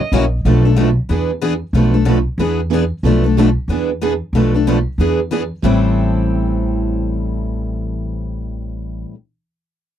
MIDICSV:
0, 0, Header, 1, 5, 480
1, 0, Start_track
1, 0, Key_signature, 0, "minor"
1, 0, Tempo, 323450
1, 671, Time_signature, 4, 2, 24, 8
1, 14815, End_track
2, 0, Start_track
2, 0, Title_t, "Violin"
2, 0, Program_c, 0, 40
2, 0, Note_on_c, 0, 75, 82
2, 198, Note_off_c, 0, 75, 0
2, 14815, End_track
3, 0, Start_track
3, 0, Title_t, "Steel-string acoustic guitar"
3, 0, Program_c, 1, 25
3, 221, Note_on_c, 1, 54, 93
3, 222, Note_on_c, 1, 61, 88
3, 226, Note_on_c, 1, 64, 97
3, 233, Note_on_c, 1, 70, 92
3, 367, Note_off_c, 1, 54, 0
3, 367, Note_off_c, 1, 61, 0
3, 369, Note_off_c, 1, 64, 0
3, 373, Note_off_c, 1, 70, 0
3, 692, Note_on_c, 1, 57, 61
3, 693, Note_on_c, 1, 47, 60
3, 701, Note_on_c, 1, 53, 59
3, 706, Note_on_c, 1, 69, 68
3, 707, Note_on_c, 1, 62, 63
3, 708, Note_on_c, 1, 71, 69
3, 980, Note_off_c, 1, 47, 0
3, 980, Note_off_c, 1, 57, 0
3, 984, Note_off_c, 1, 53, 0
3, 987, Note_off_c, 1, 69, 0
3, 988, Note_off_c, 1, 62, 0
3, 988, Note_off_c, 1, 71, 0
3, 1179, Note_on_c, 1, 47, 76
3, 1183, Note_on_c, 1, 53, 72
3, 1192, Note_on_c, 1, 57, 75
3, 1193, Note_on_c, 1, 69, 85
3, 1202, Note_on_c, 1, 62, 78
3, 1208, Note_on_c, 1, 71, 90
3, 1326, Note_off_c, 1, 47, 0
3, 1328, Note_off_c, 1, 53, 0
3, 1332, Note_off_c, 1, 57, 0
3, 1333, Note_off_c, 1, 69, 0
3, 1337, Note_off_c, 1, 62, 0
3, 1340, Note_off_c, 1, 71, 0
3, 1659, Note_on_c, 1, 62, 61
3, 1660, Note_on_c, 1, 59, 69
3, 1661, Note_on_c, 1, 52, 63
3, 1661, Note_on_c, 1, 68, 63
3, 1663, Note_on_c, 1, 71, 67
3, 1944, Note_off_c, 1, 59, 0
3, 1944, Note_off_c, 1, 62, 0
3, 1945, Note_off_c, 1, 52, 0
3, 1945, Note_off_c, 1, 68, 0
3, 1946, Note_off_c, 1, 71, 0
3, 2138, Note_on_c, 1, 52, 78
3, 2142, Note_on_c, 1, 59, 80
3, 2144, Note_on_c, 1, 62, 83
3, 2147, Note_on_c, 1, 68, 87
3, 2152, Note_on_c, 1, 71, 91
3, 2286, Note_off_c, 1, 52, 0
3, 2287, Note_off_c, 1, 59, 0
3, 2289, Note_off_c, 1, 62, 0
3, 2290, Note_off_c, 1, 68, 0
3, 2292, Note_off_c, 1, 71, 0
3, 2610, Note_on_c, 1, 53, 58
3, 2619, Note_on_c, 1, 69, 62
3, 2622, Note_on_c, 1, 47, 60
3, 2623, Note_on_c, 1, 57, 65
3, 2625, Note_on_c, 1, 71, 71
3, 2628, Note_on_c, 1, 62, 59
3, 2900, Note_off_c, 1, 53, 0
3, 2904, Note_off_c, 1, 69, 0
3, 2906, Note_off_c, 1, 47, 0
3, 2906, Note_off_c, 1, 57, 0
3, 2907, Note_off_c, 1, 71, 0
3, 2909, Note_off_c, 1, 62, 0
3, 3087, Note_on_c, 1, 47, 80
3, 3090, Note_on_c, 1, 53, 75
3, 3095, Note_on_c, 1, 62, 77
3, 3096, Note_on_c, 1, 71, 82
3, 3098, Note_on_c, 1, 57, 79
3, 3100, Note_on_c, 1, 69, 81
3, 3241, Note_off_c, 1, 47, 0
3, 3242, Note_off_c, 1, 53, 0
3, 3245, Note_off_c, 1, 62, 0
3, 3245, Note_off_c, 1, 71, 0
3, 3246, Note_off_c, 1, 57, 0
3, 3247, Note_off_c, 1, 69, 0
3, 3549, Note_on_c, 1, 52, 64
3, 3558, Note_on_c, 1, 59, 64
3, 3558, Note_on_c, 1, 68, 74
3, 3559, Note_on_c, 1, 62, 66
3, 3562, Note_on_c, 1, 71, 73
3, 3850, Note_off_c, 1, 52, 0
3, 3854, Note_off_c, 1, 59, 0
3, 3854, Note_off_c, 1, 62, 0
3, 3854, Note_off_c, 1, 68, 0
3, 3856, Note_off_c, 1, 71, 0
3, 4006, Note_on_c, 1, 59, 87
3, 4013, Note_on_c, 1, 52, 84
3, 4017, Note_on_c, 1, 68, 93
3, 4019, Note_on_c, 1, 71, 94
3, 4021, Note_on_c, 1, 62, 86
3, 4180, Note_off_c, 1, 59, 0
3, 4184, Note_off_c, 1, 52, 0
3, 4186, Note_off_c, 1, 68, 0
3, 4187, Note_off_c, 1, 71, 0
3, 4188, Note_off_c, 1, 62, 0
3, 4512, Note_on_c, 1, 53, 68
3, 4512, Note_on_c, 1, 62, 67
3, 4513, Note_on_c, 1, 47, 61
3, 4513, Note_on_c, 1, 57, 66
3, 4521, Note_on_c, 1, 71, 65
3, 4526, Note_on_c, 1, 69, 63
3, 4811, Note_off_c, 1, 53, 0
3, 4811, Note_off_c, 1, 62, 0
3, 4812, Note_off_c, 1, 47, 0
3, 4812, Note_off_c, 1, 57, 0
3, 4816, Note_off_c, 1, 71, 0
3, 4818, Note_off_c, 1, 69, 0
3, 5000, Note_on_c, 1, 47, 83
3, 5001, Note_on_c, 1, 53, 84
3, 5015, Note_on_c, 1, 62, 83
3, 5015, Note_on_c, 1, 71, 78
3, 5016, Note_on_c, 1, 69, 88
3, 5017, Note_on_c, 1, 57, 71
3, 5158, Note_off_c, 1, 47, 0
3, 5158, Note_off_c, 1, 53, 0
3, 5165, Note_off_c, 1, 62, 0
3, 5165, Note_off_c, 1, 71, 0
3, 5166, Note_off_c, 1, 57, 0
3, 5166, Note_off_c, 1, 69, 0
3, 5516, Note_on_c, 1, 52, 66
3, 5517, Note_on_c, 1, 59, 61
3, 5519, Note_on_c, 1, 68, 68
3, 5523, Note_on_c, 1, 62, 65
3, 5526, Note_on_c, 1, 71, 69
3, 5794, Note_off_c, 1, 52, 0
3, 5794, Note_off_c, 1, 59, 0
3, 5795, Note_off_c, 1, 68, 0
3, 5797, Note_off_c, 1, 62, 0
3, 5798, Note_off_c, 1, 71, 0
3, 5966, Note_on_c, 1, 59, 84
3, 5974, Note_on_c, 1, 52, 71
3, 5977, Note_on_c, 1, 71, 92
3, 5979, Note_on_c, 1, 68, 85
3, 5980, Note_on_c, 1, 62, 87
3, 6121, Note_off_c, 1, 59, 0
3, 6124, Note_off_c, 1, 52, 0
3, 6126, Note_off_c, 1, 71, 0
3, 6127, Note_off_c, 1, 68, 0
3, 6128, Note_off_c, 1, 62, 0
3, 6461, Note_on_c, 1, 47, 59
3, 6469, Note_on_c, 1, 53, 56
3, 6476, Note_on_c, 1, 57, 58
3, 6478, Note_on_c, 1, 62, 64
3, 6484, Note_on_c, 1, 71, 64
3, 6486, Note_on_c, 1, 69, 61
3, 6746, Note_off_c, 1, 47, 0
3, 6750, Note_off_c, 1, 53, 0
3, 6753, Note_off_c, 1, 57, 0
3, 6754, Note_off_c, 1, 62, 0
3, 6758, Note_off_c, 1, 69, 0
3, 6758, Note_off_c, 1, 71, 0
3, 6936, Note_on_c, 1, 47, 79
3, 6936, Note_on_c, 1, 53, 84
3, 6943, Note_on_c, 1, 69, 86
3, 6945, Note_on_c, 1, 71, 78
3, 6954, Note_on_c, 1, 57, 77
3, 6959, Note_on_c, 1, 62, 77
3, 7085, Note_off_c, 1, 53, 0
3, 7086, Note_off_c, 1, 47, 0
3, 7089, Note_off_c, 1, 69, 0
3, 7090, Note_off_c, 1, 71, 0
3, 7095, Note_off_c, 1, 57, 0
3, 7097, Note_off_c, 1, 62, 0
3, 7422, Note_on_c, 1, 52, 53
3, 7432, Note_on_c, 1, 68, 70
3, 7435, Note_on_c, 1, 62, 67
3, 7436, Note_on_c, 1, 71, 63
3, 7437, Note_on_c, 1, 59, 66
3, 7706, Note_off_c, 1, 52, 0
3, 7711, Note_off_c, 1, 68, 0
3, 7713, Note_off_c, 1, 62, 0
3, 7713, Note_off_c, 1, 71, 0
3, 7714, Note_off_c, 1, 59, 0
3, 7897, Note_on_c, 1, 52, 77
3, 7905, Note_on_c, 1, 59, 76
3, 7906, Note_on_c, 1, 62, 83
3, 7910, Note_on_c, 1, 71, 85
3, 7912, Note_on_c, 1, 68, 88
3, 8046, Note_off_c, 1, 52, 0
3, 8050, Note_off_c, 1, 59, 0
3, 8051, Note_off_c, 1, 62, 0
3, 8053, Note_off_c, 1, 71, 0
3, 8054, Note_off_c, 1, 68, 0
3, 8346, Note_on_c, 1, 45, 71
3, 8349, Note_on_c, 1, 52, 69
3, 8357, Note_on_c, 1, 60, 80
3, 8362, Note_on_c, 1, 55, 72
3, 8369, Note_on_c, 1, 64, 80
3, 8386, Note_on_c, 1, 69, 70
3, 13540, Note_off_c, 1, 45, 0
3, 13543, Note_off_c, 1, 52, 0
3, 13551, Note_off_c, 1, 60, 0
3, 13556, Note_off_c, 1, 55, 0
3, 13563, Note_off_c, 1, 64, 0
3, 13580, Note_off_c, 1, 69, 0
3, 14815, End_track
4, 0, Start_track
4, 0, Title_t, "Steel-string acoustic guitar"
4, 0, Program_c, 2, 25
4, 186, Note_on_c, 2, 52, 89
4, 190, Note_on_c, 2, 49, 82
4, 196, Note_on_c, 2, 58, 90
4, 205, Note_on_c, 2, 66, 100
4, 349, Note_off_c, 2, 52, 0
4, 351, Note_off_c, 2, 49, 0
4, 354, Note_off_c, 2, 58, 0
4, 359, Note_off_c, 2, 66, 0
4, 963, Note_on_c, 2, 69, 50
4, 970, Note_on_c, 2, 62, 53
4, 987, Note_on_c, 2, 57, 43
4, 1116, Note_off_c, 2, 57, 0
4, 1133, Note_off_c, 2, 69, 0
4, 1134, Note_off_c, 2, 62, 0
4, 2876, Note_on_c, 2, 69, 51
4, 2880, Note_on_c, 2, 62, 47
4, 2891, Note_on_c, 2, 57, 42
4, 3034, Note_off_c, 2, 62, 0
4, 3035, Note_off_c, 2, 57, 0
4, 3039, Note_off_c, 2, 69, 0
4, 4805, Note_on_c, 2, 69, 58
4, 4816, Note_on_c, 2, 62, 46
4, 4838, Note_on_c, 2, 57, 47
4, 4987, Note_off_c, 2, 69, 0
4, 4993, Note_off_c, 2, 62, 0
4, 5004, Note_off_c, 2, 57, 0
4, 6743, Note_on_c, 2, 69, 54
4, 6760, Note_on_c, 2, 62, 51
4, 6776, Note_on_c, 2, 57, 39
4, 6916, Note_off_c, 2, 69, 0
4, 6925, Note_off_c, 2, 57, 0
4, 6925, Note_off_c, 2, 62, 0
4, 14815, End_track
5, 0, Start_track
5, 0, Title_t, "Upright bass"
5, 0, Program_c, 3, 32
5, 174, Note_on_c, 3, 34, 89
5, 648, Note_off_c, 3, 34, 0
5, 666, Note_on_c, 3, 35, 80
5, 1436, Note_off_c, 3, 35, 0
5, 1620, Note_on_c, 3, 40, 79
5, 2393, Note_off_c, 3, 40, 0
5, 2569, Note_on_c, 3, 35, 82
5, 3347, Note_off_c, 3, 35, 0
5, 3528, Note_on_c, 3, 40, 81
5, 4306, Note_off_c, 3, 40, 0
5, 4499, Note_on_c, 3, 35, 88
5, 5273, Note_off_c, 3, 35, 0
5, 5459, Note_on_c, 3, 40, 79
5, 6233, Note_off_c, 3, 40, 0
5, 6422, Note_on_c, 3, 35, 81
5, 7195, Note_off_c, 3, 35, 0
5, 7390, Note_on_c, 3, 40, 77
5, 8159, Note_off_c, 3, 40, 0
5, 8356, Note_on_c, 3, 33, 84
5, 13406, Note_off_c, 3, 33, 0
5, 14815, End_track
0, 0, End_of_file